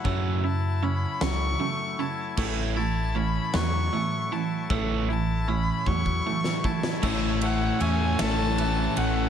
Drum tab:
CC |------------|x-----------|------------|x-----------|
RD |------------|------------|------------|--x-x-x-x-x-|
SD |------o-----|------o-----|---------o-o|------o-----|
BD |o-----------|o-----------|o-----oo--o-|o-----------|